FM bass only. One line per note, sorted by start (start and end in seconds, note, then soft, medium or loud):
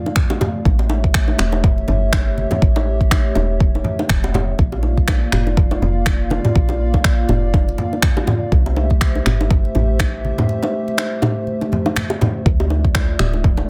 0.66 1.35 A1 medium
1.40 1.84 E1 medium
1.89 2.46 G1 loud
2.62 3.32 A1 medium
3.36 3.81 E1 medium
4.10 4.55 E1 medium
4.59 5.28 A#1 medium
5.33 5.78 F1 medium
5.82 6.39 F1 loud
6.56 7.25 A#1 medium
7.30 7.74 F1 medium
8.52 9.22 C2 medium
9.26 9.71 G1 medium
9.75 10.33 A1 loud
12.46 13.15 D2 medium
13.20 13.65 D1 medium